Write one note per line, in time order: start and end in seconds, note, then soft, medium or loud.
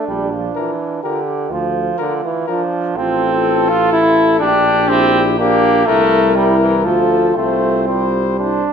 0.00 1.02 D4 medium
0.08 0.48 A#1 medium
0.08 0.35 G3 medium
0.33 0.55 F3 medium
0.55 1.02 E3 medium
0.55 0.74 F4 soft
0.55 0.72 A#4 soft
1.03 1.53 D3 medium
1.03 1.21 F4 soft
1.03 1.53 G4 medium
1.03 1.20 A#4 soft
1.51 1.91 D2 medium
1.51 1.99 F3 medium
1.51 2.47 F4 medium
1.98 2.23 D3 medium
1.98 2.17 F4 soft
1.98 2.14 A#4 soft
2.24 2.47 E3 medium
2.46 2.98 F3 medium
2.46 2.98 D4 medium
2.46 2.64 F4 soft
2.46 2.62 A#4 soft
2.95 4.43 A1 medium
2.95 3.71 C4 medium
2.95 3.31 F4 medium
2.95 3.95 F4 medium
2.95 4.44 A4 medium
3.46 4.13 A4 medium
3.69 3.92 F4 medium
3.92 4.39 E4 medium
3.92 4.42 E4 medium
4.39 5.88 A#1 medium
4.39 4.90 D4 loud
4.39 5.38 D4 medium
4.39 5.39 G4 medium
4.44 4.88 G4 medium
4.89 5.24 C4 loud
4.89 5.40 E4 medium
5.38 5.88 A#3 loud
5.38 5.86 D4 medium
5.38 5.87 D4 medium
5.38 5.87 G4 medium
5.87 6.87 C2 medium
5.87 6.37 A3 loud
5.87 6.33 E4 medium
5.87 6.84 E4 medium
5.87 6.33 A#4 medium
6.35 6.60 G3 medium
6.35 6.89 E4 medium
6.35 6.87 A#4 medium
6.60 6.86 E3 medium
6.84 7.36 D2 medium
6.84 7.37 F3 medium
6.84 7.37 F4 medium
6.84 7.38 F4 medium
6.84 7.36 A4 medium
7.35 8.62 C2 medium
7.35 7.89 A3 medium
7.35 8.38 C4 medium
7.35 7.88 F4 medium
7.35 7.87 C5 medium
7.87 8.64 G3 medium
7.87 8.39 F4 medium
7.87 8.38 C5 medium
8.39 8.73 D4 medium
8.39 8.51 E4 soft
8.39 8.64 C5 soft